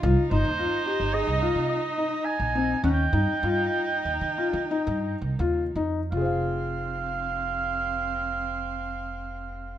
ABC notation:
X:1
M:5/4
L:1/16
Q:1/4=92
K:Fm
V:1 name="Oboe"
z2 c6 e4 e4 a4 | g16 z4 | f16- f4 |]
V:2 name="Felt piano"
F2 E2 F2 G2 A2 F4 E4 C2 | D2 E2 F4 z2 F2 E4 F2 E2 | [FAcf]16- [FAcf]4 |]
V:3 name="Cello"
E16- E4 | E16- E2 z2 | C16- C4 |]
V:4 name="Upright bass" clef=bass
C,, z G,,, E,,2 z2 G,,,2 C,,2 C,2 z4 B,,,3 | E,,2 G,, z G,,2 z2 E,, E, z E, z G,,2 C,, E,,2 F,,2 | F,,,16- F,,,4 |]